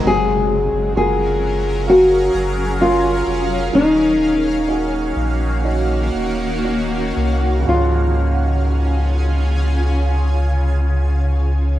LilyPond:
<<
  \new Staff \with { instrumentName = "Nylon-string guitar" } { \time 4/4 \key des \major \tempo 4 = 61 aes'4 aes'4 ges'4 f'4 | ees'2. r4 | f'1 | }
  \new Staff \with { instrumentName = "Ambient pad" } { \time 4/4 \key des \major << { f''1~ | f''1 | <des des' f' aes' aes''>1 | } \\ { <ges des' aes' bes'>1 | <ees bes ges'>1 | r1 | } >> }
  \new Staff \with { instrumentName = "Grand piano" } { \time 4/4 \key des \major ges4 <f' ges' bes'>4 <ges' bes' f''>4 <des' f' bes'>4 | ees4 <des' ees' ges'>4 <des' ees' ges'>4 <des' ees' ges'>4 | <des, aes, des f aes des'>1 | }
  \new Staff \with { instrumentName = "Sub bass" } { \clef bass \time 4/4 \key des \major ges,,8. ges,,16 ges,,4. ges,,4 f,,8 | ees,,4. bes,,4 ees,,4 c,8 | des,1 | }
>>